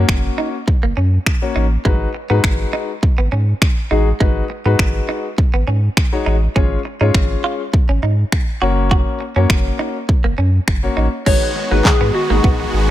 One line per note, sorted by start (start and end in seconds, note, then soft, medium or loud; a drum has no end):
0.00 0.54 A#3 medium
0.00 0.54 C#4 medium
0.00 0.54 F#4 medium
0.00 0.54 C#5 medium
0.08 0.30 F#1 medium
0.08 finger snap loud
0.08 kick loud
0.38 0.48 D#4 medium
0.67 muted clean electric guitar stroke soft
0.67 kick loud
0.83 0.93 F#1 medium
0.83 0.92 A#3 medium
0.97 1.19 F#2 loud
0.97 1.07 C#4 medium
1.26 finger snap loud
1.26 kick loud
1.42 1.64 A#3 medium
1.42 1.64 C#4 medium
1.42 1.64 F#4 medium
1.42 1.64 C#5 loud
1.56 1.77 A1 medium
1.56 1.66 D#4 medium
1.85 2.07 G#1 medium
1.85 2.08 G#3 medium
1.85 1.95 G#3 medium
1.85 2.08 D#4 medium
1.85 2.08 F#4 medium
1.85 2.08 B4 loud
1.85 kick loud
2.15 muted clean electric guitar stroke soft
2.30 2.40 G#2 loud
2.30 2.89 G#3 medium
2.30 2.39 B3 medium
2.30 2.89 D#4 medium
2.30 2.89 F#4 medium
2.30 2.89 B4 loud
2.44 2.65 G#1 loud
2.44 finger snap loud
2.44 kick loud
2.73 2.84 D#4 medium
3.03 muted clean electric guitar stroke soft
3.03 kick loud
3.18 3.29 G#1 medium
3.18 3.27 B3 medium
3.32 3.54 G#2 loud
3.32 3.42 C#4 medium
3.62 finger snap loud
3.62 kick loud
3.91 4.13 A1 medium
3.91 4.07 G#3 medium
3.91 4.01 D#4 medium
3.91 4.07 D#4 medium
3.91 4.07 F#4 medium
3.91 4.07 G#4 medium
4.20 4.42 G#1 loud
4.20 4.43 G#3 medium
4.20 4.31 G#3 medium
4.20 4.43 D#4 medium
4.20 4.43 F#4 medium
4.20 4.43 B4 medium
4.20 kick loud
4.50 muted clean electric guitar stroke soft
4.65 4.76 G#2 loud
4.65 5.24 G#3 medium
4.65 4.75 B3 medium
4.65 5.25 D#4 medium
4.65 5.25 F#4 medium
4.65 5.25 B4 medium
4.79 5.01 G#1 medium
4.79 finger snap loud
4.79 kick loud
5.09 5.19 D#4 medium
5.38 muted clean electric guitar stroke soft
5.38 kick loud
5.54 5.64 G#1 medium
5.54 5.63 B3 medium
5.67 5.89 G#2 medium
5.67 5.78 C#4 medium
5.97 finger snap loud
5.97 kick loud
6.12 6.34 G#3 medium
6.12 6.34 D#4 medium
6.12 6.34 F#4 medium
6.12 6.34 C#5 loud
6.26 6.48 A1 medium
6.26 6.37 D#4 medium
6.56 6.77 G#1 loud
6.56 6.78 G#3 medium
6.56 6.66 C#4 medium
6.56 6.78 C#4 medium
6.56 6.78 F4 medium
6.56 6.79 C#5 loud
6.56 kick loud
6.85 muted clean electric guitar stroke soft
7.01 7.11 G#2 loud
7.01 7.60 G#3 medium
7.01 7.60 C#4 medium
7.01 7.10 D#4 medium
7.01 7.60 F4 medium
7.01 7.60 C#5 medium
7.14 7.36 G#1 medium
7.14 finger snap loud
7.14 kick loud
7.44 7.54 F4 medium
7.73 muted clean electric guitar stroke soft
7.73 kick loud
7.89 7.99 G#1 medium
7.89 7.98 C#4 medium
8.03 8.24 G#2 medium
8.03 8.13 D#4 medium
8.32 finger snap loud
8.32 kick loud
8.61 9.05 F#1 medium
8.61 9.20 A#3 medium
8.61 9.21 C#4 medium
8.61 8.72 F#4 medium
8.61 9.21 F#4 medium
8.61 9.21 C#5 loud
8.91 9.01 F#4 medium
8.91 kick loud
9.21 muted clean electric guitar stroke soft
9.36 9.46 F#2 medium
9.36 9.95 A#3 medium
9.36 9.45 C#4 medium
9.36 9.95 C#4 medium
9.36 9.95 F#4 medium
9.36 9.95 C#5 medium
9.50 9.71 F#1 loud
9.50 finger snap loud
9.50 kick loud
9.79 9.90 D#4 medium
10.09 muted clean electric guitar stroke soft
10.09 kick loud
10.24 10.34 F#1 medium
10.24 10.33 A#3 medium
10.38 10.60 F#2 medium
10.38 10.48 C#4 medium
10.68 10.89 F#1 medium
10.68 finger snap loud
10.68 kick loud
10.83 11.05 A#3 medium
10.83 11.05 C#4 medium
10.83 11.05 F#4 medium
10.83 11.05 C#5 loud
10.97 11.08 A1 medium
10.97 11.07 D#4 medium
11.26 11.38 G#1 loud
11.26 12.90 D#3 medium
11.26 11.49 G#3 medium
11.26 11.37 G#3 medium
11.26 12.90 G#3 medium
11.26 12.90 B3 medium
11.26 11.49 D#4 medium
11.26 11.49 F#4 medium
11.26 12.90 F#4 medium
11.26 11.49 B4 medium
11.26 11.73 C#5 loud
11.26 kick loud
11.26 crash medium
11.56 muted clean electric guitar stroke soft
11.71 11.81 G#1 medium
11.71 12.01 G#3 medium
11.71 11.81 A#3 medium
11.71 12.01 D#4 medium
11.71 12.01 F#4 medium
11.71 11.87 B4 loud
11.71 12.01 B4 medium
11.85 11.91 G#2 soft
11.85 12.16 G#4 medium
11.85 kick loud
11.85 snare medium
11.85 clap loud
12.01 12.11 G#2 loud
12.01 12.10 B3 medium
12.15 12.90 F#4 medium
12.15 muted clean electric guitar stroke soft
12.30 12.40 G#1 medium
12.30 12.89 G#3 medium
12.30 12.39 A#3 medium
12.30 12.89 D#4 medium
12.30 12.89 F#4 medium
12.30 12.89 G#4 medium
12.44 12.65 A#1 medium
12.44 12.54 B3 medium
12.44 kick loud
12.60 muted clean electric guitar stroke soft
12.73 12.90 G#1 medium